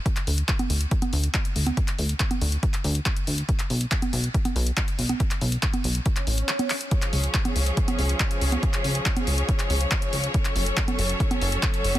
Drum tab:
HH |xxoxxxoxxxoxxxox|xxoxxxoxxxoxxxox|xxoxxxoxxxoxxxox|xxoxxxoxxxoxxxox|
CP |-x--x-------x---|-x--x----x--x---|-x--x-------x---|-x--x----x--x-x-|
CG |-----o---o-----o|-----o----------|-----o---o-----o|-----o-------o--|
BD |o---o---o---o---|o---o---o---o---|o---o---o---o---|o---o---o-------|

HH |xxoxxxoxxxoxxxox|xxoxxxoxxxoxxxox|xxoxxxoxxxoxxxox|
CP |-x--x-------x---|-x--x----x--x---|-x--x-------x---|
CG |-----o---o-----o|-----o----------|-----o---o-----o|
BD |o---o---o---o---|o---o---o---o---|o---o---o---o---|